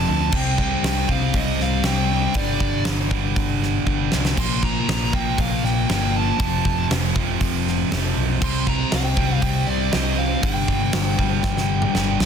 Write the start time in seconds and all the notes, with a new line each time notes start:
Already playing: F2 C3 F3
0.09 D2 A5
0.31 C2 C3 G3 C4 G5, kick, crash
0.58 G5, kick
0.83 C2, snare, open hi-hat
1.08 C2 C3 G3 C4 F5, kick
1.34 C2 D#5, kick, open hi-hat
1.59 C2 F5, snare
1.84 C2 C3 G3 C4 G5, snare, open hi-hat
2.11 G5
2.34 G1 G2 D3 G3 D5, kick, open hi-hat
2.60 G1, kick
2.85 G1, snare, open hi-hat
3.10 G1 G2 D3 G3, kick
3.36 G1, kick, open hi-hat
3.63 snare
3.85 G1 G2 D3 G3, kick
4.12 C2, snare
4.25 snare
4.35 A#1 A#2 F3 A#3 C6, kick, crash
4.63 A#5, kick
4.88 A#1, snare, open hi-hat
5.12 A#1 A#2 F3 A#3 G5, kick
5.38 A#1 F5, kick, open hi-hat
5.63 A#1 G5, snare
5.88 G1 A#2 F3 A#3, snare, open hi-hat
6.16 A5
6.38 F1 F2 C3 F3, kick, open hi-hat
6.65 F1, kick
6.91 F1, snare, open hi-hat
7.15 F1 F2 C3 F3, kick
7.41 F1, kick, open hi-hat
7.67 snare
7.90 F1 F2 C3 F3, snare, open hi-hat
8.17 B1
8.42 C2 C3 G3 C4 C6, kick, crash
8.67 A#5, kick
8.92 C2 G5, snare, open hi-hat
9.16 C2 C3 G3 C4, kick
9.42 C2 G5, kick, open hi-hat
9.67 C2 D5
9.92 C2 C3 G3 C4 D#5, snare, open hi-hat
10.18 F5
10.42 G1 G2 D3 G3 G5, kick, open hi-hat
10.68 G1, kick
10.93 G1, snare, open hi-hat
11.17 G1 G2 D3 G3, kick
11.43 G1, kick, snare
11.57 snare
11.82 mid tom
11.93 G1 G2 D3 G3, snare
12.20 C2, snare